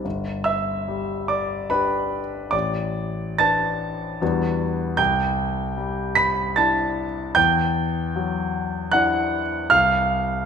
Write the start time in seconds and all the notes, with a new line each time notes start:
0.05 G1
0.44 E5 E6
0.88 G3
1.28 D5 D6
1.70 D4 G4 B4 B5
2.51 A1 D5 D6
3.38 D4 B4 A5 A6
4.22 E2 G3 B3 D4 F#4
4.97 C2 G5 G6
5.77 G3
6.15 B5 B6
6.56 D4 E4 A5 A6
7.35 E2 G5 G6
8.16 F#3
8.92 D4 E4 F#5 F#6
9.70 C2 F5 F6